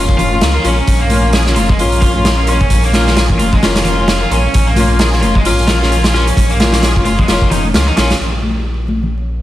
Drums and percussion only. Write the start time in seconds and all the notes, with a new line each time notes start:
0.09 kick
0.18 closed hi-hat, low conga
0.31 high conga
0.41 snare, closed hi-hat
0.64 closed hi-hat
0.87 kick, closed hi-hat
1.10 closed hi-hat, high conga
1.33 snare, closed hi-hat
1.46 snare
1.56 closed hi-hat, high conga
1.69 kick, low conga
1.79 closed hi-hat
1.92 closed hi-hat
2.02 kick, closed hi-hat
2.15 high conga
2.25 snare, closed hi-hat
2.47 closed hi-hat
2.61 kick
2.70 kick, closed hi-hat
2.83 closed hi-hat
2.93 snare, closed hi-hat, high conga
3.07 snare
3.17 snare, closed hi-hat
3.30 kick
3.39 closed hi-hat, high conga
3.53 kick, low conga
3.63 snare, closed hi-hat
3.76 snare, closed hi-hat
3.85 closed hi-hat, low conga
3.98 high conga
4.08 snare, closed hi-hat
4.31 closed hi-hat
4.54 kick, closed hi-hat
4.76 closed hi-hat, high conga
4.99 snare, closed hi-hat
5.13 snare
5.21 closed hi-hat, high conga
5.35 kick, low conga
5.45 closed hi-hat
5.59 closed hi-hat
5.68 snare, closed hi-hat
5.81 snare, high conga
5.92 closed hi-hat
6.04 snare, closed hi-hat
6.14 snare
6.27 closed hi-hat
6.36 kick, closed hi-hat, low conga
6.50 closed hi-hat
6.59 snare, closed hi-hat, high conga
6.72 snare, closed hi-hat
6.83 snare, closed hi-hat
6.96 kick
7.05 closed hi-hat, high conga
7.19 kick, low conga
7.28 snare, closed hi-hat
7.42 kick
7.51 closed hi-hat, low conga
7.64 high conga
7.74 snare, closed hi-hat
7.97 snare, closed hi-hat
8.10 snare, closed hi-hat
8.42 high conga
8.88 high conga
9.03 low conga